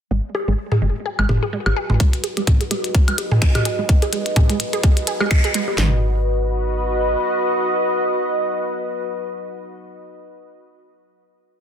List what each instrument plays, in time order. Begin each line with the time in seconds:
0.11 fm bass G#1, synth arpeggio sound G#3, ambient pad F#4
0.35 synth arpeggio sound G#4, low bongo
0.48 fm bass G#1, synth arpeggio sound G#3
0.66 ambient pad B4
0.72 synth arpeggio sound G#4, mid tom
0.82 fm bass F#1, synth arpeggio sound G#3
0.98 ambient pad D#5
1.06 synth arpeggio sound G#4
1.19 fm bass G#1, synth arpeggio sound G#3, high woodblock
1.29 fm bass F#1, mid tom, low bongo
1.43 synth arpeggio sound G#4
1.53 synth arpeggio sound G#3
1.66 fm bass G#1, low bongo, high woodblock
1.76 synth arpeggio sound G#4
1.90 fm bass G#1, synth arpeggio sound G#3, mid tom
2.00 fm bass G#1, synth arpeggio sound G#3, kick, closed hi-hat
2.13 closed hi-hat
2.24 synth arpeggio sound G#4, closed hi-hat
2.37 fm bass G#1, synth arpeggio sound G#3, closed hi-hat, low bongo
2.47 kick, closed hi-hat, mid tom
2.61 synth arpeggio sound G#4, closed hi-hat
2.71 fm bass F#1, synth arpeggio sound G#3, closed hi-hat, low bongo
2.84 closed hi-hat
2.95 synth arpeggio sound G#4, kick, closed hi-hat
3.08 fm bass G#1, synth arpeggio sound G#3, closed hi-hat, high woodblock
3.18 fm bass F#1, closed hi-hat, low bongo
3.31 synth arpeggio sound G#4, mid tom
3.42 synth arpeggio sound G#3, finger snap, kick, closed hi-hat
3.55 fm bass G#1, closed hi-hat, mid tom, low bongo, high woodblock
3.65 synth arpeggio sound G#4, closed hi-hat
3.79 fm bass G#1, synth arpeggio sound G#3
3.89 kick, closed hi-hat
4.02 synth arpeggio sound G#4, closed hi-hat, low bongo
4.13 synth arpeggio sound G#3, closed hi-hat
4.26 fm bass G#1, closed hi-hat
4.36 synth arpeggio sound G#4, kick, closed hi-hat, mid tom, low bongo
4.50 synth arpeggio sound G#3, closed hi-hat
4.60 fm bass F#1, closed hi-hat
4.73 synth arpeggio sound G#4, closed hi-hat
4.83 synth arpeggio sound G#3, kick, closed hi-hat, low bongo
4.97 closed hi-hat
5.07 fm bass G#1, synth arpeggio sound G#4, closed hi-hat
5.20 fm bass G#2, synth arpeggio sound G#3, low bongo, high woodblock
5.31 finger snap, kick, closed hi-hat
5.44 fm bass G#1, synth arpeggio sound G#4, closed hi-hat
5.54 synth arpeggio sound G#3, closed hi-hat
5.68 fm bass G#2, low bongo
5.78 fm bass G#1, synth arpeggio sound G#3, ambient pad F#4, snare, clap, floor tom
5.86 ambient pad B4
5.93 ambient pad D#5